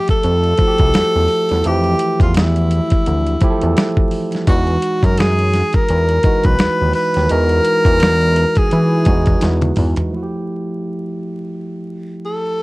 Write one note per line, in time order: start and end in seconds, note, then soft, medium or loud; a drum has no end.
0.00 0.16 F3 medium
0.00 0.16 A3 medium
0.00 0.17 G4 medium
0.00 0.17 E5 medium
0.08 1.68 A4 loud
0.08 kick medium
0.08 closed hi-hat medium
0.23 0.54 F2 medium
0.23 closed hi-hat medium
0.44 closed hi-hat soft
0.58 1.59 F3 medium
0.58 1.59 A3 medium
0.58 1.59 E4 medium
0.58 0.67 F#4 medium
0.58 kick medium
0.58 closed hi-hat medium
0.67 1.63 G4 medium
0.78 0.92 C2 medium
0.78 kick medium
0.78 closed hi-hat soft
0.94 1.03 E2 soft
0.94 snare loud
0.94 closed hi-hat medium
1.16 1.28 E2 medium
1.28 open hi-hat soft
1.49 1.63 E2 medium
1.49 snare soft
1.49 closed hi-hat soft
1.64 1.95 F2 loud
1.64 2.98 E3 medium
1.64 2.99 A3 medium
1.64 2.99 E4 medium
1.64 2.22 G4 medium
1.64 3.00 G4 medium
1.64 closed hi-hat medium
1.84 closed hi-hat soft
1.99 closed hi-hat medium
2.20 2.80 E2 medium
2.20 2.35 F4 medium
2.20 kick medium
2.20 closed hi-hat soft
2.34 4.09 E4 medium
2.34 snare loud
2.34 closed hi-hat medium
2.56 closed hi-hat soft
2.71 closed hi-hat medium
2.90 kick medium
2.90 closed hi-hat medium
3.06 3.37 D2 medium
3.06 closed hi-hat medium
3.27 closed hi-hat soft
3.41 4.41 F3 medium
3.41 4.42 A3 medium
3.41 4.42 E4 medium
3.41 3.50 G4 medium
3.41 kick medium
3.41 closed hi-hat medium
3.50 4.46 A4 medium
3.61 3.75 E2 loud
3.61 closed hi-hat soft
3.77 snare loud
3.77 closed hi-hat medium
3.97 kick loud
4.11 open hi-hat soft
4.32 snare soft
4.32 closed hi-hat soft
4.47 4.77 E2 loud
4.47 5.80 E3 medium
4.47 5.81 G#3 medium
4.47 5.82 D#4 medium
4.47 4.56 F4 medium
4.47 5.07 F#4 medium
4.47 kick loud
4.47 closed hi-hat medium
4.56 5.85 F#4 medium
4.67 closed hi-hat soft
4.82 closed hi-hat medium
5.03 5.63 F#2 medium
5.03 5.21 A#4 medium
5.03 kick medium
5.03 closed hi-hat soft
5.17 5.77 G#4 medium
5.17 snare loud
5.17 closed hi-hat medium
5.39 closed hi-hat soft
5.54 snare soft
5.54 closed hi-hat medium
5.73 6.47 A#4 medium
5.73 kick medium
5.73 closed hi-hat medium
5.89 6.19 E2 medium
5.89 closed hi-hat medium
6.09 closed hi-hat soft
6.23 7.24 E3 medium
6.23 7.24 G#3 medium
6.23 7.25 D#4 medium
6.23 7.25 F#4 medium
6.23 kick medium
6.23 closed hi-hat medium
6.44 6.57 B1 medium
6.44 6.95 B4 loud
6.44 kick medium
6.44 closed hi-hat soft
6.59 6.69 D#2 soft
6.59 snare loud
6.59 closed hi-hat medium
6.81 6.93 D#2 medium
6.93 7.33 B4 loud
6.93 open hi-hat soft
7.14 7.28 D#2 medium
7.14 snare soft
7.14 closed hi-hat soft
7.29 7.60 E2 loud
7.29 8.63 E3 medium
7.29 8.63 G#3 medium
7.29 8.64 D#4 medium
7.29 8.64 F#4 medium
7.29 8.60 A#4 loud
7.29 closed hi-hat medium
7.49 closed hi-hat soft
7.65 closed hi-hat medium
7.85 8.45 E2 loud
7.85 kick medium
7.85 closed hi-hat soft
8.00 snare loud
8.00 closed hi-hat medium
8.21 closed hi-hat soft
8.36 closed hi-hat medium
8.55 9.78 G#4 medium
8.55 kick medium
8.55 closed hi-hat medium
8.71 9.08 E3 medium
8.71 closed hi-hat medium
9.05 9.36 E2 medium
9.05 10.06 E3 medium
9.05 10.06 G#3 medium
9.05 10.07 D#4 medium
9.05 10.07 F#4 medium
9.05 kick medium
9.05 closed hi-hat medium
9.26 kick medium
9.26 closed hi-hat soft
9.41 9.72 E2 medium
9.41 snare medium
9.41 closed hi-hat medium
9.62 closed hi-hat soft
9.62 high tom medium
9.76 9.95 E2 loud
9.76 mid tom medium
9.76 open hi-hat soft
9.96 closed hi-hat soft
9.96 floor tom medium
10.10 12.63 F3 medium
10.10 12.63 A3 soft
10.14 12.63 E4 medium
10.14 10.22 F#4 soft
10.23 12.63 G4 medium
12.26 12.63 A4 medium